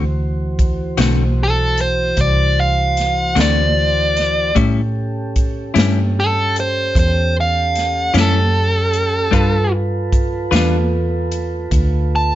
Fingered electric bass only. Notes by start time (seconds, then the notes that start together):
Already playing: D2
0.98 B1
2.17 C2
3.36 D2
4.56 A2
5.76 G2
6.96 E2
8.14 F#2
9.33 G2
10.52 E2
11.71 D2